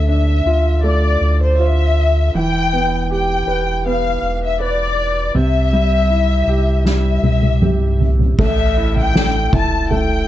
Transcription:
Already playing: sub bass D2, upright piano D3 A3
0.08 upright piano D4, violin section E5
0.46 sub bass D2, upright piano F4
0.83 upright piano A3, violin section D5
1.21 sub bass D2
1.43 violin section C5
1.59 upright piano F4, violin section E5
2.34 sub bass E1, upright piano E3, violin section G5
2.73 upright piano B3
3.11 upright piano G4, violin section G5
3.47 sub bass E1, upright piano B4
3.86 upright piano B3, violin section F5
4.22 sub bass E1
4.43 violin section E5
4.60 upright piano B4, violin section D5
5.34 sub bass C2, upright piano C3, violin section E5
5.73 upright piano G3
6.10 upright piano E4
6.47 sub bass C2, upright piano G4
6.85 upright piano G3, violin section E5, snare
7.23 sub bass C2, high tom
7.42 high tom
7.62 upright piano G4, mid tom
8.00 floor tom
8.19 floor tom
8.38 sub bass A1, upright piano A3, violin section E5, kick, floor tom, crash
8.77 upright piano E4
8.96 violin section G5, floor tom
9.16 upright piano A3, snare
9.53 sub bass E1, upright piano E4, violin section A5, kick, floor tom
9.91 upright piano A3, violin section G5, floor tom

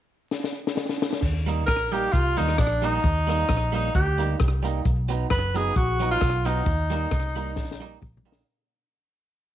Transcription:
0.31 snare
0.44 snare
0.67 snare
0.77 snare
0.89 snare
1.02 snare
1.13 snare
1.22 fingered electric bass D#2, kick, crash
1.46 clean electric guitar G3 A#3 D#4, closed hi-hat
1.67 fingered electric bass A#1, tenor saxophone A#4, kick, cross-stick, closed hi-hat
1.92 clean electric guitar G3 A#3 D#4, tenor saxophone G4, closed hi-hat
2.12 fingered electric bass C2, tenor saxophone F4, kick, closed hi-hat
2.37 fingered electric bass D#2, clean electric guitar G3 A#3 D#4, tenor saxophone D#4, closed hi-hat
2.48 cross-stick
2.58 fingered electric bass A#1, tenor saxophone D4, kick, cross-stick, closed hi-hat
2.82 clean electric guitar G3 A#3 D#4, tenor saxophone D#4, closed hi-hat
3.04 fingered electric bass D#2, kick, closed hi-hat
3.27 clean electric guitar G3 A#3 D#4, cross-stick, closed hi-hat
3.49 fingered electric bass A#1, kick, cross-stick, closed hi-hat
3.72 clean electric guitar G3 A#3 D#4, tenor saxophone D#4, closed hi-hat
3.95 fingered electric bass D2, tenor saxophone G4, kick, closed hi-hat
4.18 clean electric guitar G3 A#3 D#4, closed hi-hat
4.40 fingered electric bass C2, kick, cross-stick, closed hi-hat
4.63 clean electric guitar G3 A#3 D#4, closed hi-hat
4.85 fingered electric bass B1, kick, closed hi-hat
5.09 clean electric guitar F#3 B3 D#4, closed hi-hat
5.30 fingered electric bass F#1, tenor saxophone B4, kick, cross-stick, closed hi-hat
5.55 clean electric guitar F#3 B3 D#4, tenor saxophone G#4, closed hi-hat
5.76 fingered electric bass A#1, tenor saxophone F#4, kick, closed hi-hat
6.00 clean electric guitar F#3 B3 D#4, closed hi-hat
6.11 tenor saxophone F4
6.21 fingered electric bass B1, kick, cross-stick, closed hi-hat
6.45 clean electric guitar F#3 B3 D#4, tenor saxophone D#4, closed hi-hat
6.66 fingered electric bass D#2, kick, closed hi-hat
6.90 clean electric guitar G3 A#3 D#4, closed hi-hat
7.11 fingered electric bass C2, kick, cross-stick, closed hi-hat
7.36 clean electric guitar G3 A#3 D#4, closed hi-hat
7.56 fingered electric bass A#1, kick, snare
7.71 snare
7.80 clean electric guitar G3 A#3 D#4
8.02 fingered electric bass A#1, kick, mid tom
8.17 floor tom
8.26 clean electric guitar G3 A#3 D#4
8.32 snare

